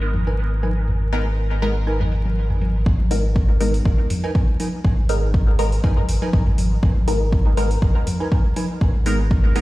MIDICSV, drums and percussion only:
0, 0, Header, 1, 2, 480
1, 0, Start_track
1, 0, Key_signature, 5, "minor"
1, 0, Tempo, 495868
1, 850, Time_signature, 4, 2, 24, 8
1, 9302, End_track
2, 0, Start_track
2, 0, Title_t, "Drums"
2, 130, Note_on_c, 9, 45, 73
2, 130, Note_on_c, 9, 48, 68
2, 131, Note_on_c, 9, 46, 81
2, 227, Note_off_c, 9, 45, 0
2, 227, Note_off_c, 9, 46, 0
2, 227, Note_off_c, 9, 48, 0
2, 261, Note_on_c, 9, 46, 31
2, 358, Note_off_c, 9, 46, 0
2, 610, Note_on_c, 9, 46, 69
2, 610, Note_on_c, 9, 48, 78
2, 707, Note_off_c, 9, 46, 0
2, 707, Note_off_c, 9, 48, 0
2, 850, Note_on_c, 9, 45, 72
2, 947, Note_off_c, 9, 45, 0
2, 1090, Note_on_c, 9, 46, 78
2, 1187, Note_off_c, 9, 46, 0
2, 1570, Note_on_c, 9, 46, 72
2, 1667, Note_off_c, 9, 46, 0
2, 1941, Note_on_c, 9, 45, 81
2, 1941, Note_on_c, 9, 48, 53
2, 2038, Note_off_c, 9, 45, 0
2, 2038, Note_off_c, 9, 48, 0
2, 2050, Note_on_c, 9, 46, 80
2, 2147, Note_off_c, 9, 46, 0
2, 2181, Note_on_c, 9, 46, 31
2, 2181, Note_on_c, 9, 48, 76
2, 2278, Note_off_c, 9, 46, 0
2, 2278, Note_off_c, 9, 48, 0
2, 2421, Note_on_c, 9, 45, 83
2, 2518, Note_off_c, 9, 45, 0
2, 2530, Note_on_c, 9, 46, 64
2, 2530, Note_on_c, 9, 48, 80
2, 2627, Note_off_c, 9, 46, 0
2, 2627, Note_off_c, 9, 48, 0
2, 2770, Note_on_c, 9, 36, 109
2, 2770, Note_on_c, 9, 45, 74
2, 2867, Note_off_c, 9, 36, 0
2, 2867, Note_off_c, 9, 45, 0
2, 2900, Note_on_c, 9, 48, 72
2, 2997, Note_off_c, 9, 48, 0
2, 3010, Note_on_c, 9, 46, 81
2, 3107, Note_off_c, 9, 46, 0
2, 3250, Note_on_c, 9, 36, 108
2, 3347, Note_off_c, 9, 36, 0
2, 3490, Note_on_c, 9, 46, 70
2, 3587, Note_off_c, 9, 46, 0
2, 3621, Note_on_c, 9, 46, 33
2, 3718, Note_off_c, 9, 46, 0
2, 3730, Note_on_c, 9, 36, 112
2, 3827, Note_off_c, 9, 36, 0
2, 3970, Note_on_c, 9, 45, 79
2, 3970, Note_on_c, 9, 46, 82
2, 3970, Note_on_c, 9, 48, 65
2, 4067, Note_off_c, 9, 45, 0
2, 4067, Note_off_c, 9, 46, 0
2, 4067, Note_off_c, 9, 48, 0
2, 4210, Note_on_c, 9, 36, 118
2, 4307, Note_off_c, 9, 36, 0
2, 4449, Note_on_c, 9, 48, 74
2, 4450, Note_on_c, 9, 46, 67
2, 4546, Note_off_c, 9, 48, 0
2, 4547, Note_off_c, 9, 46, 0
2, 4690, Note_on_c, 9, 36, 114
2, 4787, Note_off_c, 9, 36, 0
2, 4929, Note_on_c, 9, 46, 79
2, 5026, Note_off_c, 9, 46, 0
2, 5170, Note_on_c, 9, 36, 116
2, 5267, Note_off_c, 9, 36, 0
2, 5410, Note_on_c, 9, 46, 72
2, 5507, Note_off_c, 9, 46, 0
2, 5540, Note_on_c, 9, 46, 34
2, 5637, Note_off_c, 9, 46, 0
2, 5650, Note_on_c, 9, 36, 110
2, 5747, Note_off_c, 9, 36, 0
2, 5780, Note_on_c, 9, 45, 88
2, 5780, Note_on_c, 9, 48, 55
2, 5877, Note_off_c, 9, 45, 0
2, 5877, Note_off_c, 9, 48, 0
2, 5891, Note_on_c, 9, 46, 87
2, 5987, Note_off_c, 9, 46, 0
2, 6021, Note_on_c, 9, 48, 78
2, 6117, Note_off_c, 9, 48, 0
2, 6130, Note_on_c, 9, 36, 125
2, 6227, Note_off_c, 9, 36, 0
2, 6260, Note_on_c, 9, 45, 93
2, 6357, Note_off_c, 9, 45, 0
2, 6369, Note_on_c, 9, 48, 79
2, 6370, Note_on_c, 9, 46, 71
2, 6466, Note_off_c, 9, 48, 0
2, 6467, Note_off_c, 9, 46, 0
2, 6610, Note_on_c, 9, 36, 124
2, 6610, Note_on_c, 9, 45, 80
2, 6707, Note_off_c, 9, 36, 0
2, 6707, Note_off_c, 9, 45, 0
2, 6740, Note_on_c, 9, 48, 75
2, 6837, Note_off_c, 9, 48, 0
2, 6851, Note_on_c, 9, 46, 88
2, 6947, Note_off_c, 9, 46, 0
2, 7090, Note_on_c, 9, 36, 115
2, 7187, Note_off_c, 9, 36, 0
2, 7331, Note_on_c, 9, 46, 74
2, 7427, Note_off_c, 9, 46, 0
2, 7461, Note_on_c, 9, 46, 36
2, 7558, Note_off_c, 9, 46, 0
2, 7570, Note_on_c, 9, 36, 118
2, 7667, Note_off_c, 9, 36, 0
2, 7810, Note_on_c, 9, 45, 72
2, 7810, Note_on_c, 9, 48, 70
2, 7811, Note_on_c, 9, 46, 83
2, 7907, Note_off_c, 9, 45, 0
2, 7907, Note_off_c, 9, 46, 0
2, 7907, Note_off_c, 9, 48, 0
2, 8050, Note_on_c, 9, 36, 118
2, 8147, Note_off_c, 9, 36, 0
2, 8290, Note_on_c, 9, 46, 72
2, 8290, Note_on_c, 9, 48, 84
2, 8387, Note_off_c, 9, 46, 0
2, 8387, Note_off_c, 9, 48, 0
2, 8530, Note_on_c, 9, 36, 114
2, 8531, Note_on_c, 9, 45, 76
2, 8627, Note_off_c, 9, 36, 0
2, 8627, Note_off_c, 9, 45, 0
2, 8769, Note_on_c, 9, 46, 87
2, 8866, Note_off_c, 9, 46, 0
2, 9010, Note_on_c, 9, 36, 125
2, 9107, Note_off_c, 9, 36, 0
2, 9250, Note_on_c, 9, 46, 73
2, 9302, Note_off_c, 9, 46, 0
2, 9302, End_track
0, 0, End_of_file